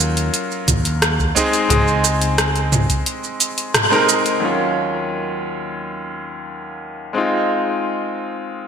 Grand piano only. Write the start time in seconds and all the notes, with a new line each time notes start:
Already playing: F#3 A#3 C#4 F4
1.35 G#3 C4 D#4 G#4
1.69 G#3 C4 D#4 G#4
3.90 G#3 C4 D#4 A#4
4.40 D#2 F#3 A#3 C#4
4.45 F4
7.13 G#3 C4 D#4
7.18 F4